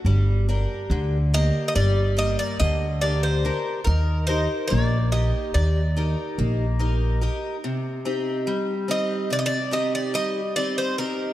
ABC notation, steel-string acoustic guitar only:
X:1
M:9/8
L:1/8
Q:3/8=48
K:none
V:1 name="Steel-string acoustic guitar"
G, [DG_B] D, [_B,GB] G, [B,GB] D, [DGB] [DGB] | _E, [_EG_B] _B, [EGB] E, [EGB] B, [EGB] [EGB] | C, [C_EG] G, [CEG] C, [CEG] G, [CEG] [CEG] |]